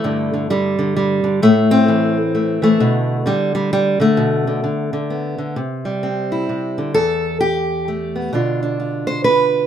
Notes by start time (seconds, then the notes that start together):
Already playing: A3
0.04 G2 D3
0.34 D3
0.50 D3 G3
0.79 D3
0.96 G3
1.24 D3
1.42 A2 A3
1.71 C4
1.88 E3
2.35 A3
2.62 E3 A3
2.80 B2 D3
3.26 D3 G3
3.55 G3
3.73 G3
4.00 D3 A3
4.17 B2
4.47 D3
4.64 D3
4.93 D3
5.10 B3
5.38 D3
5.56 C3
5.85 G3
6.03 C4
6.32 E4
6.49 C3
6.78 D3
6.94 E2 A4
7.41 G4
7.88 A3
8.16 B3
8.33 B2 D3 D4 F4
8.63 D4
8.80 F4
9.07 C5
9.24 B4